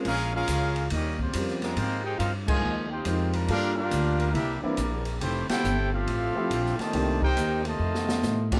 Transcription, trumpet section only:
X:1
M:4/4
L:1/8
Q:"Swing" 1/4=139
K:F
V:1 name="Trumpet section"
[_D_ABf] [DABf]3 [DGB_e] [B,FGc]2 z | [B,_EFc] [E_Acg] [EBcf] [Fc_e_a]2 [Fceg]2 z | [DGBf] [DGBf]3 [DGBe] [B,EGd]2 z | [A,EGc] [EAcg]2 [CGAf]4 [Gc_ea]- |
[Gc_ea] [_EBcg]2 [Fcea]4 z |]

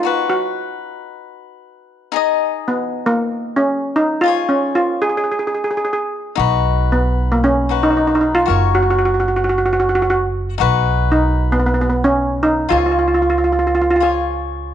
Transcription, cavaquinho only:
X:1
M:4/4
L:1/8
Q:1/4=114
K:Blyd
V:1 name="Cavaquinho"
[DFB]8 | [DGd]8 | [EGc]8 | [DFB]4- [DFB] [DFB]3 |
[FAc]8 | [DFB]8 | [EGc]4- [EGc] [EGc]3 |]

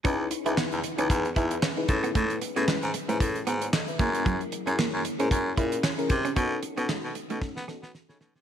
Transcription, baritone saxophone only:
X:1
M:4/4
L:1/16
Q:"Swing 16ths" 1/4=114
K:C#m
V:1 name="Baritone saxophone" clef=bass
C,,2 z C,, z E,, z C,, E,,2 E,,2 z2 A,,2 | A,,2 z A,, z G,, z G,, A,,2 G,,2 z2 F,,2- | F,,2 z F,, z F,, z G,, F,,2 ^A,,2 z2 ^B,,2 | B,,2 z B,, z B,, z B,, z B, z B, z C, B,, ^B,, |]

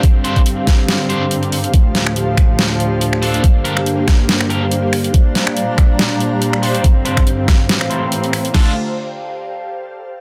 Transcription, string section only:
X:1
M:4/4
L:1/8
Q:"Swing 16ths" 1/4=141
K:Dm
V:1 name="String section" clef=bass
[G,,D,C]8 | [D,,A,,F,]8 | [G,,D,B,]8 | [B,,G,D]8 |
[G,,D,C]4 [A,,E,C]4 | [D,A,F] z6 z |]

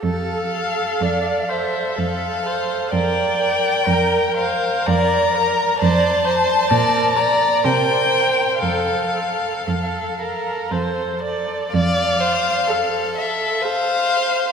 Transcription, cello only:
X:1
M:3/4
L:1/8
Q:1/4=62
K:F
V:1 name="Cello" clef=bass
F,,2 F,,2 F,,2 | F,,2 F,,2 F,,2 | F,,2 B,,2 C,2 | F,,2 F,,2 F,,2 |
F,,2 z4 |]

